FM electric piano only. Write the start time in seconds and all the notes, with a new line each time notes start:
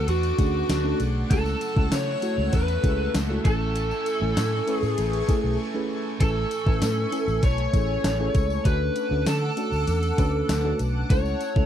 Already playing: A3 C#4 D4 F#4 A4 B4
0.38 A3 C#4 D4 F#4 G#4
0.84 A3 C#4 D4 F#4 A4
1.30 A3 C#4 E4 F#4 A4
1.76 A3 C#4 E4 F#4 A4
2.22 A3 C#4 E4 F#4 A4
2.83 A3 C#4 E4 F#4 G#4
3.29 A3 C#4 E4 F#4 A4
3.45 A3 C#4 E4 A4 G#5
4.21 A3 C#4 E4 A4 G#5
4.67 A3 C#4 E4 B4 G#5
5.28 A3 C#4 E4 A4 G#5
5.74 A3 C#4 E4 G#4 B4
6.20 A3 C#4 E4 A4 G#5
6.66 A3 C#4 E4 B4 G#5
7.12 A3 C#4 E4 A4 G#5
7.73 A3 C#4 E4 G#4 A4
8.19 A3 C#4 E4 G#4 A4
8.65 A3 C#4 D4 F#4 A4
9.11 A3 C#4 D4 F#4 A4
9.57 A3 C#4 D4 F#4 A4
10.18 A3 C#4 D4 F#4 B4
10.64 A3 C#4 D4 F#4 A4
11.10 A3 C#4 E4 F#4 A4
11.56 A3 C#4 E4 F#4 A4